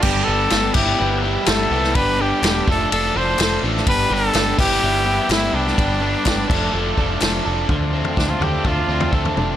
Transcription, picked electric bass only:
X:1
M:4/4
L:1/8
Q:1/4=125
K:Ddor
V:1 name="Picked electric bass" clef=bass
G,,, G,,, G,,, G,,, G,,,2 G,,, C,, | G,,,2 E,,, F,,, F,,, F,,, F,,, A,,, | G,,, G,,, G,,, G,,, G,,,2 G,,, C,, | G,,,2 G,,, F,,, F,,, F,,, F,,, F,,, |
D,,2 D,, D,, D,, D,, D,, F,,, |]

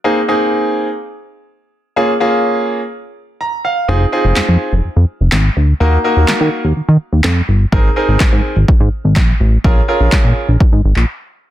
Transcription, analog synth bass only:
X:1
M:4/4
L:1/16
Q:1/4=125
K:Bbm
V:1 name="Analog synth bass" clef=bass
z16 | z16 | F,,,2 z F,,, F,, F,, z F,,, F,, F,, z F,,, A,,,2 =D,,2 | E,,2 z E,, E, E, z E,, E, E, z E,, F,,2 =G,,,2 |
A,,,2 z A,,, A,, A,, z A,,, A,, A,, z A,,, B,,,2 =A,,,2 | B,,,2 z B,,, B,, B,, z B,,, z A,, A,,, B,,, z4 |]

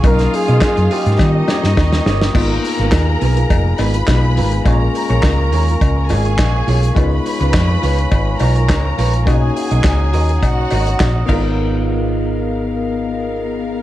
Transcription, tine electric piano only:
X:1
M:4/4
L:1/8
Q:1/4=104
K:G#dor
V:1 name="Tine electric piano"
[F,A,CD]4 [=G,A,CE]4 | [A,B,DE]6 [G,B,DE]2 | [G,A,CE]8 | [G,B,DE]8 |
[A,CDF]6- [A,CDF] [B,DEA]- | [B,DEA]8 |]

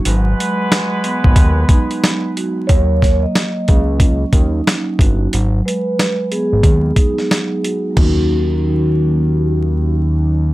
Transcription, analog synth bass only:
X:1
M:4/4
L:1/16
Q:"Swing 16ths" 1/4=91
K:Ebm
V:1 name="Analog synth bass" clef=bass
A,,,2 z4 z A,,, E,,2 z6 | E,,4 z2 D,,4 E,,2 z2 =G,,,2 | A,,,2 z4 z A,,, E,,2 z6 | E,,16 |]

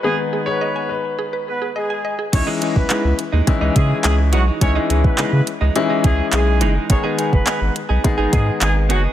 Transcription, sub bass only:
X:1
M:4/4
L:1/16
Q:1/4=105
K:C#m
V:1 name="Sub bass" clef=bass
z16 | C,, z2 B,,, z C,, z D,, z C,, C,2 C,,2 B,,,2 | C,,2 C,,2 C, C, z C,, z2 C,,2 B,,,2 F,,,2 | G,,, z2 F,,, z G,,, z B,,, z G,,, G,,2 G,,,2 F,,,2 |]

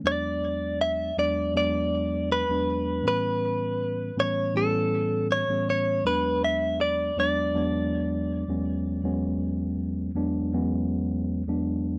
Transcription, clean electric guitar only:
X:1
M:4/4
L:1/8
Q:"Swing 16ths" 1/4=80
K:Emix
V:1 name="Clean electric guitar"
d2 e d d2 B2 | B3 c A2 c c | B e d d4 z | z8 |]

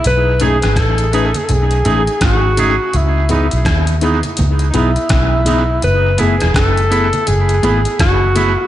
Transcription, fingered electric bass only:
X:1
M:4/4
L:1/16
Q:"Swing 16ths" 1/4=83
K:Bmix
V:1 name="Fingered electric bass" clef=bass
B,,,3 G,,, A,,,3 z B,,,2 A,,, z G,,,3 z | C,,3 B,,, D,,3 z C,,2 B,,, z B,,,4 | F,,,3 E,,, F,,,3 z F,,,2 G,,, z F,,,3 z |]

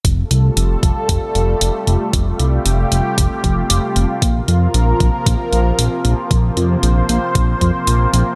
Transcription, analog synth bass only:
X:1
M:4/4
L:1/8
Q:1/4=115
K:Fmix
V:1 name="Analog synth bass" clef=bass
F,,, C,, F,,, F,,, F,,, F,,, F,,, F,,, | F,,, C,, F,,, F,,, F,,, F,,, F,,, F,,, | B,,, F,, B,,, B,,, B,,, B,,, B,,, B,,, | B,,, F,, B,,, B,,, B,,, F,, B,,, B,,, |]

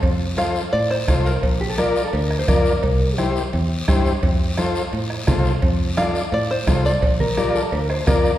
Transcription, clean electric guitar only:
X:1
M:4/4
L:1/16
Q:1/4=172
K:F
V:1 name="Clean electric guitar"
z16 | z2 G A B3 A B3 c B4- | B4 z12 | z16 |
z16 | z2 B2 G2 A2 B2 c2 B4 |]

